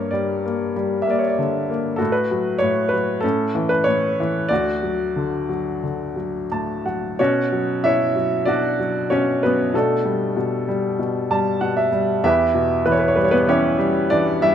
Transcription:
0.00 1.95 G2 soft
0.00 0.44 A#3 soft
0.00 0.71 A#4 soft
0.00 1.19 C#5 medium
0.11 0.75 G3 soft
0.11 0.98 D5 medium
0.45 1.06 A#3 soft
0.76 1.96 G3 soft
1.02 1.12 E5 soft
1.07 1.68 A#3 soft
1.07 1.20 D5 medium
1.19 1.28 C#5 soft
1.27 1.37 D5 soft
1.39 1.98 D3 soft
1.70 1.99 A#3 soft
1.96 3.19 F#4 soft
1.96 2.14 A4 medium
2.00 2.60 A2 medium
2.12 2.57 B4 medium
2.31 2.91 F#3 soft
2.59 3.22 A2 soft
2.59 2.92 C#5 medium
2.89 3.23 F#3 soft
2.89 3.23 B4 medium
3.21 3.86 A2 medium
3.21 4.46 C#4 soft
3.21 3.71 A4 medium
3.55 4.19 E3 soft
3.69 3.87 B4 medium
3.84 4.49 A2 soft
3.84 4.51 C#5 medium
4.20 4.50 E3 soft
4.49 7.15 D2 medium
4.49 6.46 D5 medium
4.53 6.48 F#4 medium
4.83 5.47 F#3 soft
5.16 5.82 D3 soft
5.49 6.15 F#3 soft
5.83 7.17 D3 soft
6.16 6.84 F#3 soft
6.52 7.18 A2 soft
6.52 6.84 A5 soft
6.85 7.18 F#3 soft
6.85 7.17 F#5 soft
7.19 7.82 B2 medium
7.19 7.81 C#4 medium
7.19 7.80 F#4 medium
7.19 7.84 C#5 medium
7.52 8.14 F#3 soft
7.84 8.45 B2 soft
7.84 8.44 E4 medium
7.84 8.44 C#5 medium
7.84 8.49 E5 medium
8.16 8.78 F#3 soft
8.45 9.10 B2 soft
8.45 9.08 D4 medium
8.45 9.08 F#4 medium
8.45 9.12 D5 medium
8.79 9.42 F#3 soft
9.10 9.72 B2 soft
9.10 9.41 C#4 medium
9.10 9.43 C#5 medium
9.43 9.73 F#3 soft
9.43 9.73 B3 medium
9.43 9.72 B4 medium
9.74 10.35 B2 medium
9.74 11.89 A3 soft
9.74 11.89 D4 soft
9.74 11.88 A4 medium
10.05 10.67 G3 soft
10.36 10.98 B2 medium
10.68 11.29 G3 soft
10.99 11.60 B2 soft
11.31 11.91 G3 medium
11.31 11.59 A5 medium
11.61 12.21 B2 soft
11.61 11.75 F#5 medium
11.77 12.20 E5 medium
11.92 12.22 G3 soft
12.24 14.55 E2 medium
12.24 12.83 E4 medium
12.24 12.83 G4 medium
12.24 12.83 B4 medium
12.24 12.88 E5 medium
12.55 13.75 B2 soft
12.86 13.46 E3 medium
12.86 12.93 B4 medium
12.92 13.00 C#5 medium
12.99 13.08 B4 medium
13.08 13.16 C#5 medium
13.16 13.77 G3 soft
13.16 13.23 B4 medium
13.25 13.32 C#5 medium
13.31 13.47 B3 medium
13.31 13.48 B4 medium
13.48 14.09 E3 medium
13.48 14.07 C#4 medium
13.48 14.07 E4 medium
13.48 14.07 G4 medium
13.48 14.13 C#5 medium
13.79 14.41 G3 medium
14.10 14.55 E3 soft
14.10 14.40 D4 medium
14.10 14.43 D5 medium
14.42 14.55 G3 soft
14.42 14.55 E4 medium
14.42 14.55 E5 medium

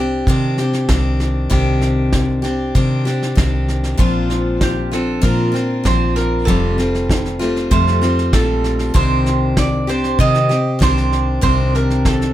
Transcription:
0.00 0.23 C2 loud
0.00 0.28 C4 soft
0.00 0.28 D4 soft
0.00 0.28 G4 medium
0.27 0.86 C3 medium
0.27 0.58 C3 medium
0.27 0.59 D#3 medium
0.27 0.59 C4 medium
0.27 0.59 D4 medium
0.27 0.58 G4 medium
0.27 kick medium
0.27 snare soft
0.58 0.88 C4 soft
0.58 0.90 D4 soft
0.58 0.89 G4 medium
0.58 snare soft
0.73 snare soft
0.89 1.48 C2 medium
0.89 1.49 D#3 medium
0.89 1.50 C4 medium
0.89 1.51 D4 medium
0.89 1.51 G4 medium
0.89 kick medium
0.89 snare medium
1.20 snare soft
1.50 2.71 C2 loud
1.50 2.44 C3 medium
1.50 2.44 D#3 medium
1.50 2.44 C4 medium
1.50 2.43 D4 medium
1.50 2.41 G4 medium
1.50 kick medium
1.50 snare soft
1.81 snare soft
2.13 kick medium
2.13 snare medium
2.42 2.74 C4 soft
2.42 2.75 D4 soft
2.42 2.74 G4 medium
2.42 snare soft
2.75 3.06 C3 medium
2.75 3.34 C3 medium
2.75 3.06 D#3 medium
2.75 3.07 C4 medium
2.75 3.06 D4 medium
2.75 3.04 G4 medium
2.75 kick medium
2.75 snare soft
3.05 3.36 C4 soft
3.05 3.37 D4 medium
3.05 3.37 G4 medium
3.05 snare soft
3.22 snare soft
3.35 3.96 C2 medium
3.35 3.98 D#3 medium
3.35 3.98 C4 medium
3.35 3.98 D4 medium
3.35 3.99 G4 medium
3.35 kick medium
3.35 snare medium
3.68 snare soft
3.84 snare soft
3.97 5.19 A#1 medium
3.97 4.92 A#2 medium
3.97 5.21 F3 medium
3.97 4.94 C4 medium
3.97 4.92 D4 medium
3.97 4.62 F4 medium
3.97 4.91 F4 medium
3.97 kick medium
3.97 snare soft
4.30 snare soft
4.61 4.91 G4 medium
4.61 kick medium
4.61 snare medium
4.91 5.21 C4 soft
4.91 5.22 D4 soft
4.91 5.23 F4 soft
4.91 5.24 A4 medium
4.91 snare soft
5.22 5.54 A#2 medium
5.22 5.82 A#2 medium
5.22 5.54 F3 medium
5.22 5.53 C4 medium
5.22 5.51 D4 medium
5.22 5.50 F4 medium
5.22 5.82 A#4 medium
5.22 kick medium
5.22 snare soft
5.52 5.84 C4 soft
5.52 5.84 D4 soft
5.52 5.84 F4 medium
5.52 snare soft
5.84 6.44 A#1 medium
5.84 6.47 F3 medium
5.84 6.48 C4 medium
5.84 6.48 D4 medium
5.84 6.48 F4 medium
5.84 6.16 C5 medium
5.84 kick medium
5.84 snare medium
6.16 6.48 A#4 medium
6.16 snare soft
6.45 7.68 F1 loud
6.45 6.78 F2 medium
6.45 6.79 C3 medium
6.45 6.79 G3 medium
6.45 6.79 A3 medium
6.45 6.78 C4 medium
6.45 7.66 A4 medium
6.45 kick medium
6.45 snare soft
6.49 6.77 F4 medium
6.78 7.42 G3 soft
6.78 7.40 A3 soft
6.78 7.40 C4 soft
6.78 7.38 F4 medium
6.78 snare soft
6.95 snare soft
7.10 kick medium
7.10 snare medium
7.25 snare soft
7.39 7.70 G3 soft
7.39 7.70 A3 soft
7.39 7.72 C4 soft
7.39 7.71 F4 medium
7.39 snare soft
7.56 snare soft
7.71 8.02 F2 medium
7.71 8.30 F2 medium
7.71 8.02 C3 medium
7.71 8.03 G3 medium
7.71 8.02 A3 medium
7.71 8.01 C4 medium
7.71 8.00 F4 medium
7.71 8.35 C5 medium
7.71 kick medium
7.71 snare soft
7.87 snare soft
8.02 8.32 G3 medium
8.02 8.33 A3 soft
8.02 8.33 C4 medium
8.02 8.33 F4 medium
8.02 snare soft
8.19 snare soft
8.33 8.92 A#1 medium
8.33 8.94 G3 medium
8.33 8.94 A3 medium
8.33 8.94 C4 medium
8.33 8.95 F4 medium
8.33 8.97 A4 medium
8.33 kick medium
8.33 snare medium
8.64 snare soft
8.79 snare soft
8.94 10.15 C2 loud
8.94 9.88 C3 medium
8.94 9.88 D#3 medium
8.94 9.90 C4 medium
8.94 9.88 D4 medium
8.94 9.87 G4 medium
8.94 9.58 C5 loud
8.94 kick medium
8.94 snare soft
9.26 snare soft
9.57 9.89 D5 loud
9.57 kick medium
9.57 snare medium
9.87 10.19 C4 soft
9.87 10.20 D4 medium
9.87 10.19 G4 medium
9.87 10.20 C5 medium
9.87 snare soft
10.04 snare soft
10.19 10.50 C3 medium
10.19 10.78 C3 medium
10.19 10.51 D#3 medium
10.19 10.50 C4 medium
10.19 10.48 G4 medium
10.19 10.82 D#5 loud
10.19 kick medium
10.19 snare soft
10.34 snare soft
10.49 10.79 C4 soft
10.49 10.81 G4 medium
10.49 snare soft
10.79 11.41 C2 medium
10.79 11.41 D#3 medium
10.79 11.42 C4 medium
10.79 11.42 D4 medium
10.79 11.43 G4 medium
10.79 kick medium
10.79 snare medium
10.83 11.42 C5 medium
10.97 snare soft
11.12 snare soft
11.41 12.34 C2 loud
11.41 12.34 C3 medium
11.41 12.34 D#3 medium
11.41 12.34 C4 medium
11.41 12.34 D4 medium
11.41 12.34 G4 medium
11.41 11.75 C5 loud
11.41 kick medium
11.41 snare soft
11.75 12.04 A#4 medium
11.75 snare soft
11.90 snare soft
12.05 12.34 A4 medium
12.05 kick medium
12.05 snare medium
12.21 snare soft

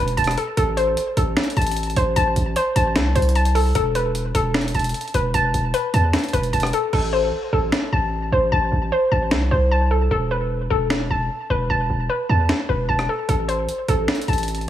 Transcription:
0.00 0.17 E1 loud
0.00 0.57 B4 medium
0.00 0.16 A5 loud
0.08 closed hi-hat soft
0.17 0.37 E1 loud
0.17 0.57 A5 loud
0.17 closed hi-hat medium
0.24 cross-stick medium
0.24 closed hi-hat medium
0.31 closed hi-hat medium
0.38 0.56 A4 medium
0.38 closed hi-hat medium
0.57 0.95 A1 loud
0.57 1.16 A4 medium
0.57 closed hi-hat medium
0.77 1.95 C5 medium
0.77 closed hi-hat medium
0.97 closed hi-hat medium
1.17 1.36 A1 loud
1.17 2.36 A4 medium
1.17 closed hi-hat medium
1.37 finger snap medium
1.37 snare loud
1.37 closed hi-hat soft
1.43 closed hi-hat medium
1.50 closed hi-hat medium
1.57 1.95 A1 loud
1.57 2.15 A5 loud
1.57 closed hi-hat soft
1.62 closed hi-hat medium
1.67 closed hi-hat medium
1.71 closed hi-hat medium
1.76 closed hi-hat medium
1.83 closed hi-hat medium
1.90 closed hi-hat soft
1.96 2.15 A1 loud
1.96 2.55 C5 medium
1.96 closed hi-hat medium
2.16 2.35 A1 loud
2.16 2.75 A5 loud
2.16 closed hi-hat medium
2.36 2.55 A1 loud
2.36 closed hi-hat medium
2.56 3.14 C5 medium
2.56 closed hi-hat medium
2.76 2.97 A1 loud
2.76 3.34 A5 loud
2.76 closed hi-hat medium
2.96 3.15 C2 loud
2.96 finger snap medium
2.96 snare loud
2.96 closed hi-hat medium
3.15 3.73 C2 loud
3.15 3.75 C5 medium
3.15 closed hi-hat medium
3.22 closed hi-hat medium
3.29 closed hi-hat medium
3.35 3.75 A5 loud
3.35 closed hi-hat medium
3.45 closed hi-hat medium
3.55 3.74 A4 medium
3.55 open hi-hat medium
3.75 4.32 E1 loud
3.75 4.33 A4 loud
3.75 closed hi-hat medium
3.95 5.13 B4 medium
3.95 closed hi-hat medium
4.15 closed hi-hat medium
4.35 4.73 E1 loud
4.35 5.54 A4 medium
4.35 closed hi-hat medium
4.54 finger snap medium
4.54 snare loud
4.54 closed hi-hat soft
4.61 closed hi-hat medium
4.68 closed hi-hat medium
4.74 4.94 E1 loud
4.74 5.33 A5 medium
4.74 closed hi-hat soft
4.79 closed hi-hat medium
4.84 closed hi-hat medium
4.89 closed hi-hat medium
4.94 closed hi-hat medium
5.01 closed hi-hat medium
5.08 closed hi-hat soft
5.14 5.33 E1 loud
5.14 5.73 B4 medium
5.14 closed hi-hat medium
5.34 5.53 E1 loud
5.34 5.93 A5 loud
5.34 closed hi-hat medium
5.54 5.73 E1 loud
5.54 closed hi-hat medium
5.74 6.32 B4 medium
5.74 closed hi-hat medium
5.94 6.13 E2 loud
5.94 6.52 A5 medium
5.94 closed hi-hat medium
6.13 finger snap medium
6.13 snare loud
6.13 closed hi-hat medium
6.19 closed hi-hat medium
6.24 closed hi-hat medium
6.29 closed hi-hat soft
6.33 6.52 E1 loud
6.33 6.93 B4 medium
6.33 closed hi-hat medium
6.43 closed hi-hat soft
6.53 6.72 E1 loud
6.53 6.93 A5 loud
6.53 closed hi-hat medium
6.60 cross-stick loud
6.60 closed hi-hat medium
6.67 closed hi-hat medium
6.73 6.92 A4 medium
6.73 closed hi-hat medium
6.93 7.31 A1 loud
6.93 7.52 A4 medium
6.93 crash medium
7.13 8.31 C5 medium
7.53 7.72 A1 loud
7.53 8.72 A4 medium
7.72 finger snap medium
7.72 snare loud
7.92 8.31 A1 loud
7.92 8.51 A5 medium
8.32 8.51 A1 loud
8.32 8.91 C5 medium
8.52 8.71 A1 loud
8.52 9.10 A5 loud
8.72 8.91 A1 loud
8.92 9.50 C5 medium
9.12 9.33 A1 loud
9.12 9.70 A5 medium
9.31 9.50 C2 loud
9.31 finger snap medium
9.31 snare loud
9.51 10.09 C2 loud
9.51 10.11 C5 medium
9.71 10.11 A5 medium
9.91 10.10 A4 medium
10.11 10.68 E1 loud
10.11 10.69 A4 loud
10.31 11.49 B4 medium
10.70 11.09 E1 loud
10.70 11.90 A4 medium
10.90 finger snap medium
10.90 snare loud
11.10 11.29 E1 loud
11.10 11.69 A5 medium
11.50 11.69 E1 loud
11.50 12.08 B4 medium
11.70 11.89 E1 loud
11.70 12.28 A5 loud
11.90 12.09 E1 loud
12.09 12.68 B4 medium
12.29 12.49 E2 loud
12.29 12.87 A5 medium
12.49 finger snap medium
12.49 snare loud
12.69 12.88 E1 loud
12.69 13.29 B4 medium
12.89 13.08 E1 loud
12.89 13.29 A5 medium
12.99 cross-stick loud
13.09 13.27 A4 medium
13.29 13.67 A1 loud
13.29 13.87 A4 medium
13.29 closed hi-hat medium
13.48 14.67 C5 medium
13.48 closed hi-hat medium
13.69 closed hi-hat medium
13.88 14.07 A1 loud
13.88 14.69 A4 medium
13.88 closed hi-hat medium
14.08 finger snap medium
14.08 snare loud
14.08 closed hi-hat soft
14.15 closed hi-hat medium
14.22 closed hi-hat medium
14.28 14.66 A1 loud
14.28 14.69 A5 medium
14.28 closed hi-hat soft
14.33 closed hi-hat medium
14.38 closed hi-hat medium
14.43 closed hi-hat medium
14.48 closed hi-hat medium
14.55 closed hi-hat medium
14.61 closed hi-hat soft

